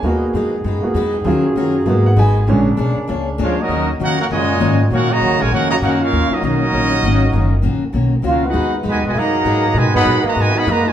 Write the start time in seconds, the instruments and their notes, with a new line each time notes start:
0.02 upright bass D#2, trombone section B2 D#3 G#3 G#4, steel-string acoustic guitar G#3 D#4 F#4 B4, grand piano A#3 B3 F#4
0.33 upright bass F2, steel-string acoustic guitar G#3 D#4 F#4 B4
0.64 upright bass F#2, steel-string acoustic guitar G#3 D#4 F#4 B4
0.82 grand piano A#3 B3 F#4, muted upright bass stroke
0.94 upright bass F2, steel-string acoustic guitar G#3 D#4 F#4 B4
1.24 upright bass D#2, steel-string acoustic guitar D#3 C#4 F#4 A#4, grand piano F#3 C#4 F4, trombone section A#3 C#4
1.55 upright bass F#2, steel-string acoustic guitar D#3 C#4 F#4 A#4
1.86 upright bass G#2, grand piano F#3 A#3 B3, steel-string acoustic guitar G#3 D#4 F#4 B4, trombone section G#3 B3
2.06 grand piano F#5
2.16 upright bass G#1, steel-string acoustic guitar G#3 D#4 F#4 B4, grand piano G#5
2.47 upright bass A#1, grand piano D3 G#3 C#4, steel-string acoustic guitar A#3 D4 G#4 C#5, trombone section A#3 C#4 D4
2.77 upright bass B1, steel-string acoustic guitar A#3 D4 G#4 C#5
2.96 muted upright bass stroke
3.08 upright bass C#2, steel-string acoustic guitar A#3 D4 G#4 C#5
3.38 upright bass D2, trombone section F3 G#3 C#4, steel-string acoustic guitar A#3 D4 G#4 C#5
3.42 trumpet section G#3 D4 F4 C#5
3.59 trombone section F#3 A#3 D#4, trumpet section C#4 F#4 A#4 D#5
3.69 upright bass D#2, steel-string acoustic guitar D#3 A#3 C#4 F#4
4.00 upright bass F2, steel-string acoustic guitar D#3 A#3 C#4 F#4, trombone section A#3 C#4 F#4, trumpet section D#4 A#4 C#5 F#5
4.19 trombone section A#3 C#4 F#4, trumpet section D#4 A#4 C#5 F#5
4.30 upright bass F#2, trombone section A#2 C#3 G#3, steel-string acoustic guitar D#3 A#3 C#4 F#4, trumpet section F#4 C#5 D#5 G#5
4.59 upright bass G#2, steel-string acoustic guitar D#3 A#3 C#4 F#4
4.90 upright bass A#2, steel-string acoustic guitar D#3 A#3 C#4 F#4, trombone section A#3 C#4 F#4, trumpet section D#4 A#4 C#5 F#5
5.10 trombone section C#3 F#3 A#3, trumpet section F#4 C#5 D#5 A#5
5.21 upright bass D#2, steel-string acoustic guitar D#3 A#3 C#4 F#4
5.31 upright bass C#2
5.40 upright bass A#1, trombone section G#3, trumpet section F4 A#4 C#5 G#5
5.51 upright bass F2, steel-string acoustic guitar D#3 A#3 C#4 F#4, trombone section A#3 C#4 F#4, trumpet section D#4 A#4 C#5 F#5
5.69 trombone section C#3 F#3 A#3, trumpet section F#4 C#5 D#5 A#5
5.81 upright bass F#2, steel-string acoustic guitar D#3 A#3 C#4 F#4, trombone section A#3 C#4 F#4, trumpet section D#4 A#4 C#5 F#5
6.00 trombone section A#3 C#4 F4, trumpet section D#4 A#4 C#5 F5
6.11 upright bass D#2, steel-string acoustic guitar D#3 A#3 C#4 F#4
6.30 trombone section F#3 A#3 D#4, trumpet section C#4 F#4 A#4 D#5, muted upright bass stroke
6.41 upright bass B1, steel-string acoustic guitar D#3 A#3 C#4 F#4, trombone section F#3 A#3 D#4, trumpet section C#4 F#4 A#4 D#5
6.72 upright bass A#1, steel-string acoustic guitar D#3 A#3 C#4 F#4
7.02 upright bass G#1, steel-string acoustic guitar D#3 A#3 C#4 F#4
7.32 upright bass F#1, steel-string acoustic guitar D#3 A#3 C#4 F#4
7.62 upright bass A#1, steel-string acoustic guitar D#3 A#3 C#4 F#4
7.82 muted upright bass stroke
7.93 upright bass B1, steel-string acoustic guitar D#3 A#3 C#4 F#4
8.22 upright bass C#2, steel-string acoustic guitar D#3 A#3 C#4 F#4, trombone section F4
8.28 trumpet section C#4 F#4 A#4 F5
8.44 trombone section B3 D#4 F#4, trumpet section D#4 G#4 B4 F#5
8.53 upright bass D#2, steel-string acoustic guitar G#3 D#4 F#4 B4
8.83 upright bass F2, trombone section B2 D#3 G#3, steel-string acoustic guitar G#3 D#4 F#4 B4
8.89 trumpet section F#4 B4 D#5 G#5
8.94 upright bass D#2
9.04 upright bass B1, trombone section B2 D#3 G#3, trumpet section F#4 B4 D#5 G#5
9.14 upright bass F#2, trombone section D#3 F#3 A#3, steel-string acoustic guitar G#3 D#4 F#4 B4, trumpet section G#4 D#5 F#5
9.18 trumpet section A#5
9.44 upright bass G#2, steel-string acoustic guitar G#3 D#4 F#4 B4
9.74 upright bass B2, trombone section B2 D#3 G#3, steel-string acoustic guitar G#3 D#4 F#4 B4, trumpet section F#4 B4 D#5 G#5
9.84 upright bass G#2
9.93 upright bass F#2, trombone section D#3 F#3 B3, trumpet section G#4 D#5 F#5 B5
10.05 upright bass A#2, steel-string acoustic guitar G#3 D#4 F#4 B4
10.24 trombone section A#3, trumpet section F#4 B4 D#5 A#5, muted upright bass stroke
10.34 upright bass G#2, trombone section B2 D#3 G#3, steel-string acoustic guitar G#3 D#4 F#4 B4, trumpet section B4 D#5
10.39 trumpet section F#4 G#5
10.53 trombone section D#3 F#3 B3, trumpet section D#5 F#5 B5
10.57 trumpet section G#4
10.66 upright bass F#2, steel-string acoustic guitar G#3 D#4 F#4 B4, trombone section A#3, trumpet section F#4 B4 D#5 A#5
10.84 trombone section A#2 C#3 G#3, trumpet section F#4 D#5 G#5
10.88 trumpet section C#5